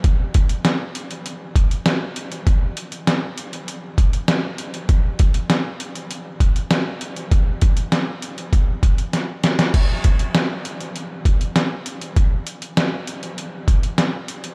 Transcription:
\new DrumStaff \with { instrumentName = "Drums" } \drummode { \time 4/4 \tempo 4 = 99 <hh bd>8 <hh bd>16 hh16 <hh sn>8 hh16 hh16 hh8 <hh bd>16 hh16 <hh sn>8 hh16 hh16 | <hh bd>8 hh16 hh16 <hh sn>8 hh16 hh16 hh8 <hh bd>16 hh16 <hh sn>8 hh16 hh16 | <hh bd>8 <hh bd>16 hh16 <hh sn>8 hh16 hh16 hh8 <hh bd>16 hh16 <hh sn>8 hh16 hh16 | <hh bd>8 <hh bd>16 hh16 <hh sn>8 hh16 hh16 <hh bd>8 <hh bd>16 hh16 <hh sn>8 <hh sn>16 <hh sn>16 |
<cymc hh bd>8 <hh bd>16 hh16 <hh sn>8 hh16 hh16 hh8 <hh bd>16 hh16 <hh sn>8 hh16 hh16 | <hh bd>8 hh16 hh16 <hh sn>8 hh16 hh16 hh8 <hh bd>16 hh16 <hh sn>8 hh16 hh16 | }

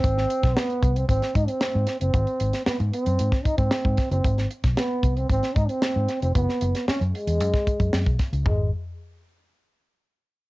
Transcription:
<<
  \new Staff \with { instrumentName = "Trombone" } { \time 4/4 \key aes \mixolydian \tempo 4 = 114 c'4 ces'8. c'16 c'8 ees'16 c'4 c'16~ | c'4 ces'8 c'4 ees'16 c'4 c'16~ | c'8 r8 ces'8. c'16 c'8 ees'16 c'4 c'16 | ces'4 des'8 aes2 r8 |
aes8 r2. r8 | }
  \new Staff \with { instrumentName = "Fingered electric bass" } { \clef bass \time 4/4 \key aes \mixolydian aes,,8 r16 ces,16 r8 c,8 aes,,16 r16 aes,16 r8 aes,16 r16 ges,,16 | aes,,16 r16 aes,,16 r8 aes,16 r16 ges,16 aes,16 r8 aes,16 r16 aes,16 r16 ges,,16 | aes,,8 r16 ces,16 r8 c,8 aes,,16 r16 aes,16 r8 aes,16 r16 f,,16 | ges,,16 r16 ges,,16 r8 ges,16 r16 fes,16 ges,16 r8 ges,16 ges,16 ces,16 r16 des,16 |
aes,,8 r2. r8 | }
  \new DrumStaff \with { instrumentName = "Drums" } \drummode { \time 4/4 <hh bd>16 sn16 hh16 <hh bd sn>16 sn16 hh16 <hh bd>16 hh16 <hh bd>16 <hh sn>16 <hh bd>16 hh16 sn8 <hh sn>16 hh16 | <hh bd>16 hh16 hh16 <hh sn>16 sn16 hh16 hh16 hh16 hh16 <bd sn>16 <hh bd>16 <hh bd>16 sn16 bd16 <hh bd sn>16 hh16 | <hh bd>16 <hh sn>16 hh16 <hh bd sn>16 sn8 <hh bd>16 hh16 <hh bd>16 <hh sn>16 <hh bd>16 hh16 sn8 <hh sn>16 hh16 | <hh bd>16 sn16 hh16 <hh sn>16 sn16 hh16 hh16 hh16 hh16 <hh bd sn>16 <hh bd>16 <hh bd>16 sn16 <hh bd>16 <hh bd sn>16 hh16 |
<bd tomfh>4 r4 r4 r4 | }
>>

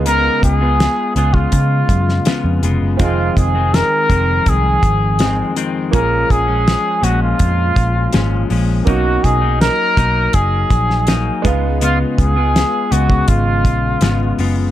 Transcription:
<<
  \new Staff \with { instrumentName = "Trumpet" } { \time 4/4 \key cis \mixolydian \tempo 4 = 82 ais'8 gis'4 gis'16 eis'4.~ eis'16 r8 | f'8 aes'8 ais'4 aes'4. r8 | ais'8 gis'4 fis'16 eis'4.~ eis'16 r8 | fis'8 gis'8 ais'4 gis'4. r8 |
eis'8 gis'4 fis'8 eis'4. r8 | }
  \new Staff \with { instrumentName = "Upright piano" } { \time 4/4 \key cis \mixolydian <b dis' eis' gis'>2.~ <b dis' eis' gis'>8 r8 | <c' ees' f' aes'>1 | <ais cis' eis' gis'>1 | <ais cis' dis' fis'>2.~ <ais cis' dis' fis'>8 <gis b dis' eis''>8~ |
<gis b dis' eis''>2.~ <gis b dis' eis''>8 r8 | }
  \new Staff \with { instrumentName = "Clean electric guitar" } { \clef bass \time 4/4 \key cis \mixolydian <cis gis b eis'>8. <gis b eis'>8. <cis gis b eis'>4. <cis gis b eis'>8 <cis gis b eis'>8 | <f, ees aes c'>8. <ees aes c'>8. <f, ees aes c'>4. <f, ees aes c'>8 <f, ees aes c'>8 | <ais, eis gis cis'>8. <eis gis cis'>8. <ais, eis gis cis'>4. <ais, eis gis cis'>8 <ais, eis gis cis'>8 | <b, fis ais dis'>8. <fis ais dis'>8. <fis ais dis'>4. <fis ais dis'>8 <cis gis b eis'>8 |
<cis gis b eis'>8. <gis b eis'>8. <cis gis b>4. <cis gis b eis'>8 <cis gis b eis'>8 | }
  \new Staff \with { instrumentName = "Picked electric bass" } { \clef bass \time 4/4 \key cis \mixolydian cis,8 cis,8. r16 cis,8 cis8 fis,8 r16 eis,16 eis,,16 fis,,16 | f,,8 f,,8. r16 f,,8 c,8 aes,,4 r8 | ais,,8 ais,,8. r16 ais,,8 eis,8 ais,,8 gis,,8 ais,,8 | b,,8 b,,8. r16 b,,8 fis,,8 ais,,4 cis,8~ |
cis,8 cis,8. r16 cis,8 gis,,8 ais,,8 gis,,8 fis,,8 | }
  \new DrumStaff \with { instrumentName = "Drums" } \drummode { \time 4/4 hh8 <hh bd>8 <hh sn>8 hh16 bd16 <hh bd>8 <hh bd>16 sn16 <hh sn>8 hh8 | <hh bd>8 <hh bd>8 <hh sn>8 <hh bd>8 <hh bd>8 <hh bd>8 <hh sn>8 hh8 | <hh bd>8 <hh bd>8 <hh sn>8 hh8 <hh bd>8 <hh bd>8 <hh sn>8 hho8 | <hh bd>8 <hh bd>8 <hh sn>8 <hh bd>8 <hh bd>8 <hh bd>16 sn16 <hh sn>8 <hh bd>8 |
hh8 <hh bd>8 <hh sn>8 hh16 bd16 <hh bd>8 <hh bd>8 <hh sn>8 hho8 | }
>>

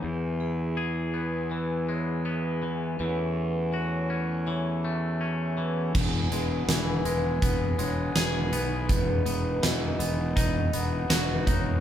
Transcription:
<<
  \new Staff \with { instrumentName = "Vibraphone" } { \time 4/4 \key e \major \tempo 4 = 81 r8 gis'4 b'4 cis''8 b'4 | b'4 cis''4 cis''8 e''4 b'8 | r8 gis'4 b'4 cis''8 b'4 | b'4 dis''4 dis''8 fis''4 cis''8 | }
  \new Staff \with { instrumentName = "Harmonium" } { \time 4/4 \key e \major <b gis'>1 | <cis' fis'>1 | <b gis'>1 | <b dis'>1 | }
  \new Staff \with { instrumentName = "Harmonium" } { \clef bass \time 4/4 \key e \major e1 | a1 | e1~ | e1 | }
  \new Staff \with { instrumentName = "Clean electric guitar" } { \time 4/4 \key e \major e,4 gis'8 b8 e8 gis8 b8 e8 | e4 fis'8 cis'8 e8 a8 cis'8 e8 | e,8 gis8 e8 gis8 b8 gis8 gis'8 b8 | e,8 b8 e8 b8 dis'8 b8 fis'8 dis'8 | }
  \new Staff \with { instrumentName = "Fingered electric bass" } { \clef bass \time 4/4 \key e \major e,1 | e,1 | e,,8 e,,8 e,,8 e,,8 e,,8 e,,8 e,,8 b,,8 | e,,8 e,,8 e,,8 e,,8 e,,8 e,,8 e,,8 e,,8 | }
  \new DrumStaff \with { instrumentName = "Drums" } \drummode { \time 4/4 r4 r4 r4 r4 | r4 r4 r4 r4 | <cymc bd>8 hh8 <hh sn>8 hh8 <hh bd>8 hh8 <hh sn>8 hh8 | <hh bd>8 hh8 <hh sn>8 hh8 <hh bd>8 hh8 <hh sn>8 <hh bd>8 | }
>>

